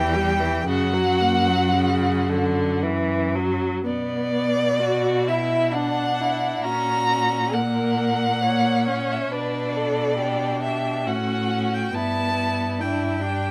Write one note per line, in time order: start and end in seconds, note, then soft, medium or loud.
0.00 0.64 E2 medium
0.00 0.16 E3 medium
0.00 0.69 G4 medium
0.00 0.68 G5 loud
0.14 0.42 G3 medium
0.40 0.66 E3 medium
0.66 3.60 F#2 medium
0.66 0.95 C#3 medium
0.66 2.79 F#4 medium
0.66 2.79 F#5 loud
0.93 1.22 F#3 medium
1.21 1.49 A#3 medium
1.48 1.75 F#3 medium
1.75 2.31 C#3 medium
2.29 2.84 D3 medium
2.83 3.37 E3 medium
3.35 3.85 F#3 medium
3.85 6.60 B2 medium
3.85 4.81 B3 medium
3.85 5.30 D5 loud
4.80 5.29 F#4 medium
4.80 5.30 F#4 medium
5.28 5.73 E4 medium
5.28 5.76 E4 medium
5.28 5.75 E5 medium
5.72 6.65 D4 medium
5.72 6.22 D4 medium
5.72 6.64 F#5 medium
6.20 6.66 E4 medium
6.64 9.28 A#2 medium
6.64 7.08 C#4 medium
6.64 7.55 F#4 medium
6.64 7.56 A#5 loud
7.08 7.55 C#4 medium
7.53 8.42 A#3 medium
7.53 8.43 A#4 medium
7.53 9.14 F#5 loud
8.42 8.89 A#3 medium
8.42 9.33 C#5 medium
8.87 9.33 C#4 medium
9.12 9.33 E5 medium
9.31 11.08 B2 medium
9.31 10.18 D4 medium
9.31 9.77 B4 medium
9.31 10.60 D5 medium
9.75 10.18 A4 medium
10.18 11.08 D4 medium
10.18 11.08 G4 medium
10.63 11.09 E5 medium
11.06 11.94 A2 medium
11.06 11.94 C#4 medium
11.06 11.96 F#4 medium
11.06 11.76 F#5 medium
11.74 11.96 G5 medium
11.94 13.51 G2 medium
11.94 12.81 B3 medium
11.94 12.80 E4 medium
11.94 12.82 A5 loud
12.80 13.21 D4 medium
12.80 13.22 E4 medium
12.80 13.51 G5 medium
13.21 13.51 D4 medium
13.21 13.51 G4 medium